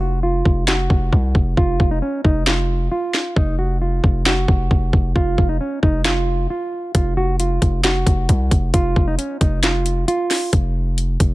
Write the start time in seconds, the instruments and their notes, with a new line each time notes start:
Already playing: 808-style bass F1
0.01 nylon-string guitar F#4
0.23 nylon-string guitar F4
0.45 808-style bass F1, kick
0.68 nylon-string guitar F#4, snare, clap
0.90 808-style bass F1, kick
1.13 808-style bass C2, kick
1.35 808-style bass F1, kick
1.57 808-style bass F1, nylon-string guitar F4, kick
1.80 808-style bass F1, kick
1.91 nylon-string guitar D#4
2.02 nylon-string guitar C#4
2.24 808-style bass F1, nylon-string guitar D#4, kick
2.47 nylon-string guitar F4, snare, clap
2.92 nylon-string guitar F4
3.14 snare
3.36 808-style bass F1, nylon-string guitar D#4, kick
3.59 nylon-string guitar F#4
3.82 nylon-string guitar F4
4.04 808-style bass F1, kick
4.26 nylon-string guitar F#4, snare, clap
4.48 808-style bass F1, kick
4.71 808-style bass F1, kick
4.93 808-style bass F1, kick
5.16 808-style bass F1, nylon-string guitar F4, kick
5.38 808-style bass F1, kick
5.49 nylon-string guitar D#4
5.61 nylon-string guitar C#4
5.83 808-style bass F1, nylon-string guitar D#4, kick
6.05 nylon-string guitar F4, snare, clap
6.50 nylon-string guitar F4
6.95 808-style bass F1, nylon-string guitar F4, kick, closed hi-hat
7.17 nylon-string guitar F#4
7.40 nylon-string guitar F4, closed hi-hat
7.62 808-style bass F1, kick, closed hi-hat
7.84 nylon-string guitar F#4, snare, clap, closed hi-hat
8.07 808-style bass F1, kick, closed hi-hat
8.29 808-style bass C2, kick, closed hi-hat
8.51 808-style bass F1, kick, closed hi-hat
8.74 808-style bass F1, nylon-string guitar F4, kick, closed hi-hat
8.96 808-style bass F1, kick
9.08 nylon-string guitar D#4
9.18 nylon-string guitar C#4, closed hi-hat
9.41 808-style bass F1, nylon-string guitar D#4, kick, closed hi-hat
9.63 nylon-string guitar F4, snare, clap, closed hi-hat
9.86 closed hi-hat
10.08 nylon-string guitar F4, closed hi-hat
10.31 snare, open hi-hat
10.53 808-style bass F1, kick, closed hi-hat
10.98 closed hi-hat
11.20 808-style bass F1, kick, closed hi-hat